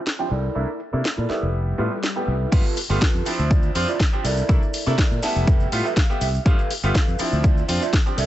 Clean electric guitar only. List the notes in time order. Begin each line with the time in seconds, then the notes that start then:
0.19 E4 F4 C5
0.30 E4 A4 A#4 D5
0.93 muted clean electric guitar stroke
1.17 E4 A4 A#4 D5
1.78 E4 G4 A4 B4
2.16 E4 G4 A4 B4
2.52 F4 G4 A4 B4
3.01 F4 G4 A4 B4
3.50 E4 F4 C5 D5
3.88 E4 F4 C5 D5
4.12 muted clean electric guitar stroke
4.24 E4 A4 A#4 D5
4.98 E4 A4 A#4 D5
5.23 A5
5.47 G4 A4 B4 E5 G5
5.84 G4 A4 B4 E5
5.97 F5
6.09 muted clean electric guitar stroke
6.21 E5
6.45 G4 A4 B4 F5
6.94 G4 A4 B4 F5
7.43 F4 C5 D5 E5
7.81 F4 C5 D5 E5
8.06 muted clean electric guitar stroke
8.17 A4 A#4 D5 E5